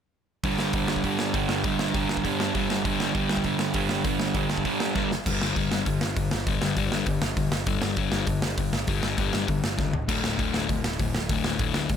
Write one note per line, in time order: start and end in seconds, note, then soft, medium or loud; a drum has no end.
0.44 0.75 G2 medium
0.44 0.74 D3 medium
0.44 0.74 G3 medium
0.44 kick loud
0.44 open hi-hat medium
0.59 snare loud
0.73 1.03 G2 medium
0.73 1.03 D3 medium
0.73 1.05 G3 medium
0.73 kick loud
0.73 open hi-hat medium
0.88 snare loud
0.96 kick medium
1.04 1.35 G2 medium
1.04 1.34 D3 loud
1.04 1.34 G3 loud
1.04 kick medium
1.04 open hi-hat medium
1.19 snare loud
1.34 1.63 G2 medium
1.34 1.63 D3 medium
1.34 1.65 G3 loud
1.34 kick loud
1.34 open hi-hat medium
1.49 snare loud
1.64 1.94 G2 medium
1.64 1.93 D3 loud
1.64 1.93 G3 loud
1.64 kick loud
1.64 open hi-hat medium
1.79 snare loud
1.93 2.23 G2 medium
1.93 2.23 D3 loud
1.93 2.25 G3 loud
1.93 kick loud
1.93 open hi-hat medium
2.09 snare loud
2.17 kick medium
2.24 2.55 G2 loud
2.24 2.54 D3 loud
2.24 2.54 G3 loud
2.24 kick medium
2.24 open hi-hat soft
2.40 snare loud
2.55 2.84 G2 medium
2.55 2.84 D3 medium
2.55 2.86 G3 loud
2.55 kick loud
2.55 open hi-hat medium
2.70 snare loud
2.85 3.15 G2 loud
2.85 3.14 D3 loud
2.85 3.14 G3 loud
2.85 kick loud
2.85 open hi-hat medium
3.00 snare loud
3.14 3.44 G2 medium
3.14 3.44 D3 loud
3.14 3.46 G3 loud
3.14 kick loud
3.14 open hi-hat soft
3.29 snare loud
3.37 kick medium
3.44 3.76 G2 loud
3.44 3.74 D3 loud
3.44 3.74 G3 loud
3.44 kick medium
3.44 open hi-hat soft
3.59 snare loud
3.74 4.03 G2 medium
3.74 4.04 D3 loud
3.74 4.04 G3 loud
3.74 kick loud
3.74 open hi-hat medium
3.89 snare loud
4.04 4.35 G2 loud
4.04 4.35 D3 loud
4.04 4.34 G3 loud
4.04 kick loud
4.04 open hi-hat medium
4.20 snare loud
4.34 4.64 G2 medium
4.34 4.65 D3 medium
4.34 4.65 G3 medium
4.34 kick loud
4.34 open hi-hat medium
4.50 snare loud
4.57 kick medium
4.65 4.95 G2 medium
4.65 4.94 D3 loud
4.65 4.94 G3 loud
4.65 kick medium
4.65 open hi-hat soft
4.80 snare loud
4.95 5.10 G2 medium
4.95 5.10 D3 loud
4.95 5.10 G3 loud
4.95 kick loud
4.95 snare medium
5.11 snare medium
5.26 5.38 G1 medium
5.26 5.55 G2 medium
5.26 5.55 D3 medium
5.26 5.56 G3 loud
5.26 kick loud
5.26 crash loud
5.41 5.53 G1 medium
5.41 snare loud
5.56 5.68 G1 medium
5.56 5.85 G2 medium
5.56 5.86 D3 medium
5.56 5.86 G3 medium
5.56 kick loud
5.56 open hi-hat medium
5.72 5.84 G1 medium
5.72 snare loud
5.86 5.99 G1 medium
5.86 6.00 G2 medium
5.86 6.00 D3 medium
5.86 kick medium
5.86 open hi-hat medium
6.01 6.14 G1 medium
6.01 snare loud
6.16 6.29 G1 medium
6.16 6.30 G2 medium
6.16 6.30 D3 medium
6.16 kick loud
6.16 open hi-hat medium
6.31 6.45 G1 medium
6.31 snare loud
6.47 6.59 G1 medium
6.47 6.75 G2 medium
6.47 6.76 D3 loud
6.47 6.76 G3 loud
6.47 kick loud
6.47 open hi-hat medium
6.62 6.74 G1 medium
6.62 snare loud
6.77 6.89 G1 medium
6.77 7.05 G2 medium
6.77 7.06 D3 medium
6.77 7.07 G3 medium
6.77 kick medium
6.77 open hi-hat medium
6.92 7.04 G1 medium
6.92 snare loud
7.06 7.19 G1 medium
7.06 7.20 G2 medium
7.06 7.21 D3 medium
7.06 kick medium
7.06 open hi-hat soft
7.22 7.34 G1 medium
7.22 snare loud
7.37 7.49 G1 medium
7.37 7.51 G2 medium
7.37 7.51 D3 medium
7.37 kick loud
7.37 open hi-hat medium
7.52 7.64 G1 medium
7.52 snare loud
7.66 7.79 G1 medium
7.66 7.96 G2 medium
7.66 7.97 D3 medium
7.66 7.97 G3 loud
7.66 kick loud
7.66 open hi-hat medium
7.82 7.95 G1 loud
7.82 snare loud
7.96 8.10 G1 medium
7.96 8.26 G2 medium
7.96 8.27 D3 loud
7.96 8.27 G3 loud
7.96 kick loud
7.96 open hi-hat medium
8.12 8.24 G1 medium
8.12 snare loud
8.27 8.39 G1 medium
8.27 8.41 G2 medium
8.27 8.42 D3 medium
8.27 kick medium
8.27 open hi-hat medium
8.42 8.55 G1 medium
8.42 snare loud
8.58 8.70 G1 medium
8.58 8.72 G2 medium
8.58 8.72 D3 medium
8.58 kick loud
8.58 open hi-hat medium
8.73 8.85 G1 medium
8.73 snare loud
8.87 9.00 G1 medium
8.87 9.17 G2 medium
8.87 9.17 D3 medium
8.87 9.18 G3 loud
8.87 kick loud
8.87 open hi-hat medium
9.03 9.15 G1 medium
9.03 snare loud
9.18 9.30 G1 medium
9.18 9.47 G2 medium
9.18 9.47 D3 medium
9.18 9.48 G3 medium
9.18 kick loud
9.18 open hi-hat medium
9.33 9.46 G1 medium
9.33 snare medium
9.48 9.61 G1 medium
9.48 9.62 G2 medium
9.48 9.62 D3 medium
9.48 kick medium
9.48 open hi-hat soft
9.64 9.76 G1 medium
9.64 snare loud
9.78 9.91 C#2 medium
9.78 9.92 G2 medium
9.78 9.92 D3 medium
9.78 kick loud
9.78 snare medium
9.93 10.06 D1 medium
9.93 floor tom medium
10.08 10.21 D1 medium
10.08 10.36 D2 medium
10.08 10.37 A2 medium
10.08 10.38 D3 loud
10.08 kick loud
10.08 open hi-hat medium
10.08 crash loud
10.24 10.36 D1 medium
10.24 snare loud
10.38 10.51 D1 medium
10.38 10.67 D2 medium
10.38 10.67 A2 medium
10.38 10.69 D3 medium
10.38 kick loud
10.38 open hi-hat soft
10.54 10.66 D1 medium
10.54 snare loud
10.68 10.81 D1 medium
10.68 10.82 D2 medium
10.68 10.83 A2 medium
10.68 kick medium
10.68 open hi-hat medium
10.83 10.96 D1 medium
10.83 snare loud
10.99 11.12 D1 medium
10.99 11.13 D2 medium
10.99 11.13 A2 medium
10.99 kick loud
10.99 open hi-hat medium
11.13 11.26 D1 loud
11.13 snare loud
11.29 11.42 D1 medium
11.29 11.59 D2 medium
11.29 11.59 A2 medium
11.29 11.60 D3 loud
11.29 kick loud
11.29 open hi-hat medium
11.44 11.57 D1 medium
11.44 snare loud
11.59 11.72 D1 loud
11.59 11.89 D2 medium
11.59 11.88 A2 medium
11.59 11.90 D3 medium
11.59 kick loud
11.59 open hi-hat soft
11.74 11.87 D1 medium
11.74 snare loud
11.89 11.97 D1 loud
11.89 11.97 D2 medium
11.89 11.97 A2 medium
11.89 kick loud
11.89 open hi-hat medium